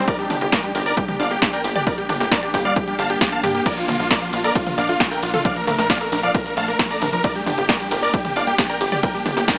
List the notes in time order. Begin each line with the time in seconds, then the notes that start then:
Already playing: G3 D4
0.08 G3 A#3 A#4 D5, kick, closed hi-hat
0.19 G3 G4, closed hi-hat
0.30 G1 D4 G4, open hi-hat, mid tom
0.41 G1 A#3 G4, closed hi-hat
0.52 G3 A#4 D5, kick, snare, closed hi-hat
0.64 G3 G4, closed hi-hat
0.75 G1 G4 A#4, open hi-hat
0.86 A#4 D5, closed hi-hat
0.97 G3 G4, kick, closed hi-hat
1.08 G3 G4, closed hi-hat, mid tom
1.19 G1 D4 D5 F5, open hi-hat
1.31 A#3 G4, closed hi-hat
1.42 D4 G4, kick, snare, closed hi-hat
1.53 A#4 D5 G5, closed hi-hat
1.64 G1 G4, open hi-hat
1.75 G4 D5, closed hi-hat, mid tom
1.87 G3 A#4 D5, kick, closed hi-hat
1.98 G3 G4, closed hi-hat
2.09 G1 D4 G4, open hi-hat, mid tom
2.20 G1 A#3 G4, snare, closed hi-hat
2.32 D4 A#4 D5, kick, snare, closed hi-hat
2.43 G4 D5, closed hi-hat
2.54 G1 G4, kick, open hi-hat
2.65 G3 D5 F5, closed hi-hat
2.76 G3 G4, kick, closed hi-hat
2.87 G3 G4, closed hi-hat
2.99 G1 G4 F5 A5, open hi-hat
3.10 D4 G4, closed hi-hat
3.21 G4, kick, snare, closed hi-hat
3.32 A#3 F5 A5, closed hi-hat
3.43 G2 G4, open hi-hat, mid tom
3.55 A#3 G4, closed hi-hat
3.66 F3 A3 A#4 D5, kick, closed hi-hat, crash, ride
3.77 F3 F4, closed hi-hat
3.88 A#1 A#3 F4, open hi-hat, mid tom
3.99 A#1 A3 F4, closed hi-hat
4.11 F3 A#4 D5, kick, snare, closed hi-hat, ride
4.22 F3 F4, closed hi-hat
4.33 A#1 F4, open hi-hat
4.44 A4 A#4 D5, closed hi-hat
4.55 F3 F4, kick, closed hi-hat, ride
4.67 F3 F4, closed hi-hat, mid tom
4.78 A#1 A#3 D5 F5, open hi-hat
4.89 A3 F4, closed hi-hat
5.00 A#3 F4, kick, snare, closed hi-hat, ride
5.11 A4 A#4 G5, closed hi-hat
5.23 A#1 D4 F4, open hi-hat
5.34 F4 A4, closed hi-hat, mid tom
5.45 F3 C4 D5 F5, kick, closed hi-hat, ride
5.56 F3 A#4, closed hi-hat
5.67 A#1 A#3 A#4, open hi-hat, mid tom
5.79 A#1 A3 A#4, snare, closed hi-hat
5.90 A#3 D5 F5, kick, snare, closed hi-hat, ride
6.01 A4 A#4, closed hi-hat
6.12 A#1 D4 A#4, open hi-hat
6.23 F3 D5 F5, closed hi-hat
6.34 F3 A#4, kick, closed hi-hat, ride
6.46 F3 A#4, closed hi-hat
6.57 A#1 A3 F5 A5, open hi-hat
6.68 A#3 A#4, closed hi-hat
6.79 F3 A#4, kick, snare, closed hi-hat, ride
6.91 A4 D5 A#5, closed hi-hat
7.02 A#1 D4 A#4, open hi-hat, mid tom
7.13 F3 A#4, closed hi-hat
7.24 G3 A#3 D4 A#4 D5, kick, closed hi-hat, ride
7.35 G3 G4, closed hi-hat
7.46 G1 D4 G4, open hi-hat, mid tom
7.58 G1 A#3 G4, closed hi-hat
7.69 G3 A#4 D5, kick, snare, closed hi-hat, ride
7.80 G3 G4, closed hi-hat
7.91 G1 G4 A#4, open hi-hat
8.02 A#4 D5, closed hi-hat
8.14 G3 G4, kick, closed hi-hat, ride
8.25 G3 G4, closed hi-hat, mid tom
8.36 G1 D4 D5 F5, open hi-hat
8.47 A#3 G4, closed hi-hat
8.58 D4 G4, kick, snare, closed hi-hat, ride
8.69 A#4 D5 G5, closed hi-hat
8.81 G1 G4, open hi-hat
8.92 G4 D5, closed hi-hat, mid tom
9.03 G3 A#4 G5, kick, closed hi-hat, ride
9.14 G3 G4, closed hi-hat
9.26 G1 D4 G4, open hi-hat, mid tom
9.37 G1 A#3 G4, snare, closed hi-hat
9.48 D4 A#4 G5, kick, snare, closed hi-hat, ride